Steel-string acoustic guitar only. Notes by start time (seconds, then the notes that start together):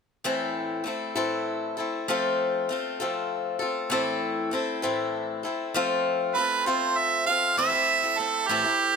0.24 A2 E3 A3 C4 E4 A4
0.84 A3 C4 E4 A4
1.15 A2 E3 A3 C4 E4 A4
1.77 A3 C4 E4 A4
2.08 F3 A3 C4 F4 A4
2.69 A3 C4 F4 A4
3.00 F3 A3 C4 F4 A4
3.59 C4 F4 A4
3.90 A2 E3 A3 C4 E4 A4
4.51 A3 C4 E4 A4
4.82 A2 E3 A3 C4 E4 A4
5.43 A3 C4 E4 A4
5.74 F3 A3 C4 F4 A4
6.35 A3 C4 F4 A4
6.66 F3 A3 C4 F4 A4
7.26 C4 F4 A4
7.57 A2 E3 A3 C4 E4 A4
7.72 A3 C4 E4 A4
8.02 A3 C4 E4 A4
8.19 A3 C4 E4 A4
8.49 A2 E3 A3 C4 E4 A4
8.64 A3 C4 E4 A4